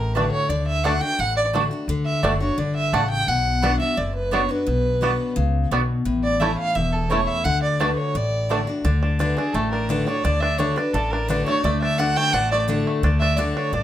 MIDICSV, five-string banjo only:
0, 0, Header, 1, 2, 480
1, 0, Start_track
1, 0, Key_signature, 2, "major"
1, 0, Tempo, 348028
1, 684, Time_signature, 4, 2, 24, 8
1, 19080, End_track
2, 0, Start_track
2, 0, Title_t, "Five-string banjo"
2, 0, Program_c, 0, 105
2, 228, Note_on_c, 0, 57, 57
2, 233, Note_on_c, 0, 62, 58
2, 237, Note_off_c, 0, 62, 0
2, 237, Note_on_c, 0, 62, 59
2, 323, Note_off_c, 0, 57, 0
2, 327, Note_off_c, 0, 62, 0
2, 1175, Note_on_c, 0, 57, 68
2, 1185, Note_on_c, 0, 62, 68
2, 1186, Note_off_c, 0, 62, 0
2, 1186, Note_on_c, 0, 62, 70
2, 1276, Note_off_c, 0, 57, 0
2, 1281, Note_off_c, 0, 62, 0
2, 2137, Note_on_c, 0, 57, 66
2, 2145, Note_on_c, 0, 62, 72
2, 2236, Note_off_c, 0, 57, 0
2, 2239, Note_off_c, 0, 62, 0
2, 3093, Note_on_c, 0, 57, 63
2, 3098, Note_on_c, 0, 62, 64
2, 3100, Note_off_c, 0, 62, 0
2, 3100, Note_on_c, 0, 62, 70
2, 3193, Note_off_c, 0, 57, 0
2, 3196, Note_off_c, 0, 62, 0
2, 4048, Note_on_c, 0, 57, 65
2, 4054, Note_on_c, 0, 62, 64
2, 4058, Note_off_c, 0, 62, 0
2, 4058, Note_on_c, 0, 62, 61
2, 4150, Note_off_c, 0, 57, 0
2, 4154, Note_off_c, 0, 62, 0
2, 5014, Note_on_c, 0, 59, 68
2, 5018, Note_off_c, 0, 59, 0
2, 5018, Note_on_c, 0, 59, 62
2, 5021, Note_on_c, 0, 62, 72
2, 5114, Note_off_c, 0, 59, 0
2, 5116, Note_off_c, 0, 62, 0
2, 5973, Note_on_c, 0, 59, 69
2, 5975, Note_off_c, 0, 59, 0
2, 5975, Note_on_c, 0, 59, 59
2, 5982, Note_on_c, 0, 62, 66
2, 6072, Note_off_c, 0, 59, 0
2, 6076, Note_off_c, 0, 62, 0
2, 6938, Note_on_c, 0, 59, 67
2, 6941, Note_off_c, 0, 59, 0
2, 6941, Note_on_c, 0, 59, 70
2, 6949, Note_on_c, 0, 62, 68
2, 7037, Note_off_c, 0, 59, 0
2, 7038, Note_off_c, 0, 62, 0
2, 7894, Note_on_c, 0, 59, 64
2, 7899, Note_off_c, 0, 59, 0
2, 7899, Note_on_c, 0, 59, 67
2, 7904, Note_on_c, 0, 62, 67
2, 7995, Note_off_c, 0, 59, 0
2, 7998, Note_off_c, 0, 62, 0
2, 8851, Note_on_c, 0, 57, 67
2, 8857, Note_on_c, 0, 61, 67
2, 8861, Note_on_c, 0, 64, 70
2, 8953, Note_off_c, 0, 57, 0
2, 8955, Note_off_c, 0, 61, 0
2, 8958, Note_off_c, 0, 64, 0
2, 9814, Note_on_c, 0, 57, 62
2, 9821, Note_on_c, 0, 61, 60
2, 9824, Note_on_c, 0, 64, 68
2, 9915, Note_off_c, 0, 57, 0
2, 9917, Note_off_c, 0, 61, 0
2, 9920, Note_off_c, 0, 64, 0
2, 10766, Note_on_c, 0, 57, 73
2, 10774, Note_on_c, 0, 62, 67
2, 10777, Note_off_c, 0, 62, 0
2, 10777, Note_on_c, 0, 62, 68
2, 10873, Note_off_c, 0, 57, 0
2, 10878, Note_off_c, 0, 62, 0
2, 11733, Note_on_c, 0, 57, 64
2, 11741, Note_on_c, 0, 62, 64
2, 11743, Note_off_c, 0, 62, 0
2, 11743, Note_on_c, 0, 62, 67
2, 11837, Note_off_c, 0, 57, 0
2, 11842, Note_off_c, 0, 62, 0
2, 12203, Note_on_c, 0, 62, 64
2, 12449, Note_off_c, 0, 62, 0
2, 12449, Note_on_c, 0, 62, 61
2, 12685, Note_off_c, 0, 62, 0
2, 12690, Note_on_c, 0, 62, 63
2, 12935, Note_off_c, 0, 62, 0
2, 12940, Note_on_c, 0, 62, 64
2, 13172, Note_on_c, 0, 57, 62
2, 13411, Note_off_c, 0, 62, 0
2, 13417, Note_on_c, 0, 62, 58
2, 13649, Note_off_c, 0, 62, 0
2, 13655, Note_on_c, 0, 62, 59
2, 13890, Note_off_c, 0, 62, 0
2, 13895, Note_on_c, 0, 62, 63
2, 14128, Note_off_c, 0, 62, 0
2, 14133, Note_on_c, 0, 62, 72
2, 14373, Note_off_c, 0, 62, 0
2, 14378, Note_on_c, 0, 62, 65
2, 14619, Note_off_c, 0, 62, 0
2, 14619, Note_on_c, 0, 62, 66
2, 14861, Note_off_c, 0, 62, 0
2, 14861, Note_on_c, 0, 62, 62
2, 15098, Note_off_c, 0, 62, 0
2, 15103, Note_off_c, 0, 57, 0
2, 15104, Note_on_c, 0, 62, 66
2, 15344, Note_off_c, 0, 62, 0
2, 15350, Note_on_c, 0, 62, 59
2, 15584, Note_off_c, 0, 62, 0
2, 15590, Note_on_c, 0, 62, 62
2, 15830, Note_on_c, 0, 57, 60
2, 16063, Note_off_c, 0, 57, 0
2, 16068, Note_on_c, 0, 57, 86
2, 16308, Note_off_c, 0, 62, 0
2, 16308, Note_on_c, 0, 62, 62
2, 16549, Note_off_c, 0, 62, 0
2, 16549, Note_on_c, 0, 62, 62
2, 16781, Note_off_c, 0, 57, 0
2, 16786, Note_on_c, 0, 57, 71
2, 17019, Note_off_c, 0, 62, 0
2, 17024, Note_on_c, 0, 62, 64
2, 17256, Note_off_c, 0, 57, 0
2, 17273, Note_on_c, 0, 57, 55
2, 17502, Note_off_c, 0, 62, 0
2, 17508, Note_on_c, 0, 62, 55
2, 17735, Note_off_c, 0, 57, 0
2, 17751, Note_on_c, 0, 57, 56
2, 17982, Note_off_c, 0, 62, 0
2, 17987, Note_on_c, 0, 62, 66
2, 18226, Note_off_c, 0, 62, 0
2, 18232, Note_on_c, 0, 62, 62
2, 18413, Note_off_c, 0, 57, 0
2, 18464, Note_off_c, 0, 62, 0
2, 18464, Note_on_c, 0, 62, 56
2, 18712, Note_off_c, 0, 62, 0
2, 18712, Note_on_c, 0, 62, 59
2, 18941, Note_off_c, 0, 62, 0
2, 18946, Note_on_c, 0, 62, 60
2, 19080, Note_off_c, 0, 62, 0
2, 19080, End_track
0, 0, End_of_file